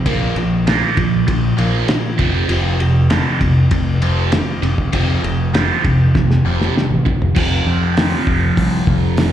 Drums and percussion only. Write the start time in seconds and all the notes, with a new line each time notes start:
0.06 kick, ride
0.36 ride
0.67 snare, ride
0.97 kick, ride
1.28 kick, ride
1.58 ride
1.88 snare, ride
2.19 kick, ride
2.49 ride
2.80 ride
3.10 snare, ride
3.41 kick, ride
3.71 kick, ride
4.02 ride
4.32 snare, ride
4.63 ride
4.78 kick
4.93 kick, ride
5.24 ride
5.54 snare, ride
5.84 kick, ride
6.15 kick, snare
6.31 snare
6.61 snare
6.77 snare
7.06 kick
7.22 floor tom
7.36 kick, crash
7.97 snare, open hi-hat
8.27 kick
8.57 kick, open hi-hat
8.87 kick
9.17 snare, open hi-hat